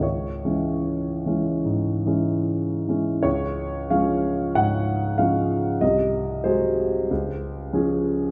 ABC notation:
X:1
M:4/4
L:1/8
Q:1/4=93
K:C#m
V:1 name="Grand piano"
c6 z2 | [K:Db] d2 f2 g2 f2 | e2 c6 |]
V:2 name="Grand piano" clef=bass
C,, [E,G,C]2 [E,G,C] G,, [E,G,C]2 [E,G,C] | [K:Db] D,,2 [F,A,D]2 A,,2 [F,A,D]2 | C,,2 [G,A,A]2 D,,2 [F,DA]2 |]